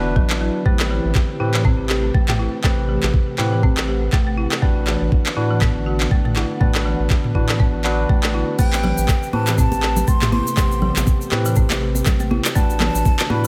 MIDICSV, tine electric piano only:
0, 0, Header, 1, 2, 480
1, 0, Start_track
1, 0, Tempo, 495868
1, 635, Time_signature, 4, 2, 24, 8
1, 13039, End_track
2, 0, Start_track
2, 0, Title_t, "Tine electric piano"
2, 0, Program_c, 0, 4
2, 0, Note_on_c, 0, 62, 93
2, 0, Note_on_c, 0, 66, 84
2, 0, Note_on_c, 0, 71, 108
2, 610, Note_off_c, 0, 62, 0
2, 610, Note_off_c, 0, 66, 0
2, 610, Note_off_c, 0, 71, 0
2, 635, Note_on_c, 0, 60, 84
2, 635, Note_on_c, 0, 67, 77
2, 635, Note_on_c, 0, 71, 94
2, 1330, Note_off_c, 0, 60, 0
2, 1330, Note_off_c, 0, 67, 0
2, 1330, Note_off_c, 0, 71, 0
2, 1354, Note_on_c, 0, 60, 84
2, 1354, Note_on_c, 0, 67, 76
2, 1354, Note_on_c, 0, 71, 94
2, 2530, Note_off_c, 0, 60, 0
2, 2530, Note_off_c, 0, 67, 0
2, 2530, Note_off_c, 0, 71, 0
2, 2553, Note_on_c, 0, 60, 81
2, 2553, Note_on_c, 0, 67, 77
2, 2553, Note_on_c, 0, 71, 92
2, 3249, Note_off_c, 0, 60, 0
2, 3249, Note_off_c, 0, 67, 0
2, 3249, Note_off_c, 0, 71, 0
2, 3273, Note_on_c, 0, 60, 84
2, 3273, Note_on_c, 0, 67, 78
2, 3274, Note_on_c, 0, 71, 94
2, 4449, Note_off_c, 0, 60, 0
2, 4449, Note_off_c, 0, 67, 0
2, 4450, Note_off_c, 0, 71, 0
2, 4474, Note_on_c, 0, 62, 86
2, 4474, Note_on_c, 0, 71, 92
2, 4475, Note_on_c, 0, 66, 80
2, 5170, Note_off_c, 0, 62, 0
2, 5170, Note_off_c, 0, 66, 0
2, 5170, Note_off_c, 0, 71, 0
2, 5194, Note_on_c, 0, 62, 84
2, 5194, Note_on_c, 0, 66, 79
2, 5194, Note_on_c, 0, 71, 89
2, 6369, Note_off_c, 0, 66, 0
2, 6369, Note_off_c, 0, 71, 0
2, 6370, Note_off_c, 0, 62, 0
2, 6393, Note_on_c, 0, 71, 98
2, 6394, Note_on_c, 0, 62, 86
2, 6394, Note_on_c, 0, 66, 77
2, 7089, Note_off_c, 0, 62, 0
2, 7089, Note_off_c, 0, 71, 0
2, 7090, Note_off_c, 0, 66, 0
2, 7114, Note_on_c, 0, 62, 84
2, 7114, Note_on_c, 0, 66, 73
2, 7114, Note_on_c, 0, 71, 87
2, 7574, Note_off_c, 0, 62, 0
2, 7574, Note_off_c, 0, 66, 0
2, 7574, Note_off_c, 0, 71, 0
2, 7593, Note_on_c, 0, 62, 96
2, 7593, Note_on_c, 0, 66, 88
2, 7593, Note_on_c, 0, 71, 104
2, 8289, Note_off_c, 0, 62, 0
2, 8289, Note_off_c, 0, 66, 0
2, 8289, Note_off_c, 0, 71, 0
2, 8312, Note_on_c, 0, 60, 86
2, 8312, Note_on_c, 0, 67, 73
2, 8313, Note_on_c, 0, 71, 95
2, 9009, Note_off_c, 0, 60, 0
2, 9009, Note_off_c, 0, 67, 0
2, 9009, Note_off_c, 0, 71, 0
2, 9032, Note_on_c, 0, 60, 81
2, 9032, Note_on_c, 0, 67, 75
2, 9032, Note_on_c, 0, 71, 95
2, 10209, Note_off_c, 0, 60, 0
2, 10209, Note_off_c, 0, 67, 0
2, 10209, Note_off_c, 0, 71, 0
2, 10233, Note_on_c, 0, 67, 78
2, 10234, Note_on_c, 0, 59, 93
2, 10234, Note_on_c, 0, 60, 84
2, 10929, Note_off_c, 0, 59, 0
2, 10929, Note_off_c, 0, 67, 0
2, 10930, Note_off_c, 0, 60, 0
2, 10955, Note_on_c, 0, 67, 77
2, 10956, Note_on_c, 0, 60, 83
2, 10956, Note_on_c, 0, 71, 92
2, 12130, Note_off_c, 0, 60, 0
2, 12130, Note_off_c, 0, 67, 0
2, 12130, Note_off_c, 0, 71, 0
2, 12154, Note_on_c, 0, 62, 90
2, 12154, Note_on_c, 0, 66, 77
2, 12154, Note_on_c, 0, 71, 98
2, 12849, Note_off_c, 0, 71, 0
2, 12850, Note_off_c, 0, 62, 0
2, 12850, Note_off_c, 0, 66, 0
2, 12873, Note_on_c, 0, 62, 80
2, 12873, Note_on_c, 0, 66, 72
2, 12873, Note_on_c, 0, 71, 89
2, 13039, Note_off_c, 0, 62, 0
2, 13039, Note_off_c, 0, 66, 0
2, 13039, Note_off_c, 0, 71, 0
2, 13039, End_track
0, 0, End_of_file